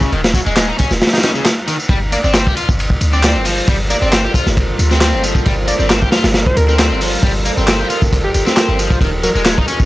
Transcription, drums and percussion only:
0.01 kick, tambourine
0.12 ride, tambourine
0.24 snare, ride
0.34 kick, ride, tambourine
0.46 ride, tambourine
0.57 snare, clap, ride, tambourine
0.79 kick, ride, tambourine
0.91 snare, tambourine
1.01 snare, ride, tambourine
1.07 snare, ride
1.14 snare, ride
1.18 snare, ride
1.23 snare, ride, tambourine
1.35 tambourine
1.45 snare, clap, ride, tambourine
1.68 ride, tambourine
1.80 tambourine
1.89 kick, ride
2.12 ride, tambourine
2.24 tambourine
2.34 snare, clap, ride, tambourine
2.47 kick
2.57 ride, tambourine
2.69 kick, tambourine
2.79 ride, tambourine
2.90 kick
3.01 ride, tambourine
3.13 tambourine
3.23 snare, clap, ride, tambourine
3.45 open hi-hat, ride, tambourine
3.58 tambourine
3.67 kick, ride, tambourine
3.90 ride, tambourine
4.02 tambourine
4.13 snare, clap, ride, tambourine
4.34 kick, ride, tambourine
4.47 snare, tambourine
4.57 kick, ride, tambourine
4.79 ride, tambourine
4.91 snare, tambourine
5.01 snare, clap, ride, tambourine
5.13 ride
5.23 ride, tambourine
5.35 kick, tambourine
5.46 kick, ride, tambourine
5.68 ride, tambourine
5.80 tambourine
5.90 snare, clap, ride, tambourine
6.02 kick
6.12 snare, ride, tambourine
6.24 snare, ride, tambourine
6.34 snare, ride, tambourine
6.46 kick
6.57 ride, tambourine
6.69 tambourine
6.79 snare, clap, ride, tambourine
7.01 open hi-hat, ride, tambourine
7.13 tambourine
7.23 kick, ride, tambourine
7.45 ride, tambourine
7.58 tambourine
7.68 snare, clap, ride, tambourine
7.90 ride, tambourine
8.02 kick, tambourine
8.12 kick, ride, tambourine
8.34 ride, tambourine
8.46 snare, tambourine
8.57 snare, clap, ride, tambourine
8.69 ride
8.79 ride, tambourine
8.91 kick, tambourine
9.01 kick, ride, tambourine
9.23 ride, tambourine
9.35 tambourine
9.45 snare, clap, ride, tambourine
9.58 kick
9.68 ride, tambourine
9.80 kick, tambourine

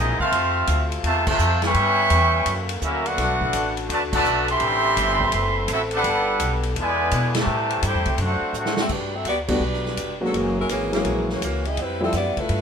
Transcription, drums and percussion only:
0.20 kick
0.32 kick, ride
0.67 kick, hi-hat pedal, ride
0.92 ride
1.04 kick, ride
1.27 kick, crash
1.39 hi-hat pedal
1.62 snare, ride
1.74 kick, ride
2.10 kick, hi-hat pedal, ride
2.46 kick, ride
2.69 ride
2.82 kick, hi-hat pedal
3.06 ride
3.18 kick, snare, ride
3.41 kick
3.53 kick, hi-hat pedal, ride
3.77 ride
3.90 kick, ride
4.13 kick, crash
4.25 hi-hat pedal
4.48 ride
4.60 kick, ride
4.97 kick, hi-hat pedal, ride
5.20 kick
5.32 kick, ride
5.68 kick, hi-hat pedal, ride
5.91 ride
6.04 kick, ride
6.40 kick, hi-hat pedal, ride
6.63 ride
6.76 kick, ride
7.11 kick, hi-hat pedal, ride
7.35 snare, ride
7.70 ride
7.83 kick, hi-hat pedal, ride
8.06 kick, ride
8.18 kick, ride
8.54 hi-hat pedal
8.66 snare
8.77 snare
8.89 kick, crash
9.25 kick, hi-hat pedal, ride
9.48 kick, crash
9.74 snare
9.86 snare
9.97 kick, hi-hat pedal, ride
10.34 kick, ride
10.69 kick, hi-hat pedal, ride
10.93 snare, ride
11.05 kick, ride
11.30 snare
11.42 kick, hi-hat pedal, ride
11.65 ride
11.77 kick, ride
12.13 kick, snare, hi-hat pedal, ride
12.37 kick, ride
12.49 kick, ride

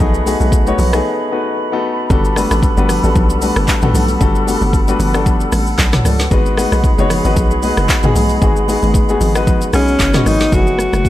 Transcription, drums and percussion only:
0.00 kick, low conga, shaker
0.14 shaker
0.26 open hi-hat, high conga, shaker
0.40 high conga, shaker
0.52 kick, shaker
0.67 high conga, shaker
0.79 open hi-hat, low conga, shaker
0.93 cross-stick, shaker
2.10 kick, shaker
2.25 shaker
2.36 cross-stick, open hi-hat, high conga, shaker
2.51 cross-stick, high conga, shaker
2.63 kick, shaker
2.77 high conga, shaker
2.89 cross-stick, open hi-hat, low conga, shaker
3.04 shaker
3.15 kick, low conga, shaker
3.30 shaker
3.42 open hi-hat, high conga, shaker
3.56 cross-stick, shaker
3.68 kick, clap, shaker
3.82 mid tom, shaker
3.94 open hi-hat, high conga, low conga, shaker
4.08 shaker
4.21 kick, shaker
4.35 shaker
4.47 open hi-hat, high conga, shaker
4.62 high conga, shaker
4.73 kick, shaker
4.88 high conga, shaker
5.00 open hi-hat, low conga, shaker
5.14 cross-stick, shaker
5.26 kick, low conga, shaker
5.40 shaker
5.52 cross-stick, open hi-hat, high conga, shaker
5.67 shaker
5.78 kick, snare, clap, shaker
5.92 cross-stick, snare, mid tom, shaker
6.05 cross-stick, open hi-hat, high conga, low conga, shaker
6.19 snare, shaker
6.31 kick, shaker
6.46 shaker
6.57 cross-stick, open hi-hat, high conga, shaker
6.72 cross-stick, high conga, shaker
6.84 kick, shaker
6.98 high conga, shaker
7.10 cross-stick, open hi-hat, low conga, shaker
7.25 shaker
7.36 kick, low conga, shaker
7.51 shaker
7.63 open hi-hat, high conga, shaker
7.77 cross-stick, shaker
7.89 kick, clap, shaker
8.03 mid tom, shaker
8.15 open hi-hat, high conga, low conga, shaker
8.29 shaker
8.42 kick, shaker
8.56 shaker
8.68 open hi-hat, high conga, shaker
8.83 high conga, shaker
8.94 kick, shaker
9.09 high conga, shaker
9.21 open hi-hat, low conga, shaker
9.35 cross-stick, shaker
9.47 kick, low conga, shaker
9.61 shaker
9.73 cross-stick, open hi-hat, high conga, shaker
9.88 shaker
9.99 kick, snare, clap, shaker
10.13 cross-stick, snare, mid tom, shaker
10.26 cross-stick, open hi-hat, high conga, low conga, shaker
10.40 snare, shaker
10.52 kick, low conga, shaker
10.67 shaker
10.79 cross-stick, high conga, shaker
10.93 cross-stick, high conga, shaker
11.05 kick, shaker

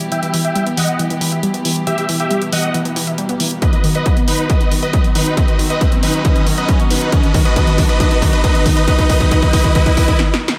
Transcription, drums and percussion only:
0.01 closed hi-hat
0.12 closed hi-hat
0.23 closed hi-hat
0.34 open hi-hat
0.45 closed hi-hat
0.56 closed hi-hat
0.67 closed hi-hat
0.77 open hi-hat
0.88 closed hi-hat
0.99 closed hi-hat
1.10 closed hi-hat
1.21 open hi-hat
1.32 closed hi-hat
1.43 closed hi-hat
1.54 closed hi-hat
1.65 open hi-hat
1.76 closed hi-hat
1.87 closed hi-hat
1.98 closed hi-hat
2.09 open hi-hat
2.20 closed hi-hat
2.31 closed hi-hat
2.42 closed hi-hat
2.53 open hi-hat
2.63 closed hi-hat
2.74 closed hi-hat
2.85 closed hi-hat
2.96 open hi-hat
3.07 closed hi-hat
3.18 closed hi-hat
3.29 closed hi-hat
3.40 open hi-hat
3.51 closed hi-hat
3.62 kick, closed hi-hat
3.73 closed hi-hat
3.84 open hi-hat
3.95 closed hi-hat
4.06 kick, closed hi-hat
4.17 closed hi-hat
4.28 open hi-hat
4.39 closed hi-hat
4.50 kick, closed hi-hat
4.61 closed hi-hat
4.72 open hi-hat
4.83 closed hi-hat
4.93 kick, closed hi-hat
5.04 closed hi-hat
5.15 open hi-hat
5.26 closed hi-hat
5.37 kick, closed hi-hat
5.48 closed hi-hat
5.59 open hi-hat
5.70 closed hi-hat
5.81 kick, closed hi-hat
5.92 closed hi-hat
6.03 open hi-hat
6.14 closed hi-hat
6.25 kick, closed hi-hat
6.36 closed hi-hat
6.47 open hi-hat
6.58 closed hi-hat
6.69 kick, closed hi-hat
6.80 closed hi-hat
6.91 open hi-hat
7.12 kick, closed hi-hat
7.23 closed hi-hat
7.34 kick, open hi-hat
7.45 closed hi-hat
7.56 kick, closed hi-hat
7.67 closed hi-hat
7.78 kick, open hi-hat
7.89 closed hi-hat
8.00 kick, closed hi-hat
8.11 closed hi-hat
8.22 kick, open hi-hat
8.33 closed hi-hat
8.44 kick, closed hi-hat
8.55 closed hi-hat
8.66 kick, open hi-hat
8.77 closed hi-hat
8.88 kick, closed hi-hat
8.99 kick, closed hi-hat
9.10 kick, open hi-hat
9.20 kick, closed hi-hat
9.31 kick, closed hi-hat
9.42 kick, closed hi-hat
9.53 kick, open hi-hat
9.64 kick, closed hi-hat
9.75 kick, closed hi-hat
9.86 kick, closed hi-hat
9.97 kick, open hi-hat
10.08 kick, closed hi-hat
10.19 snare
10.34 snare
10.48 snare

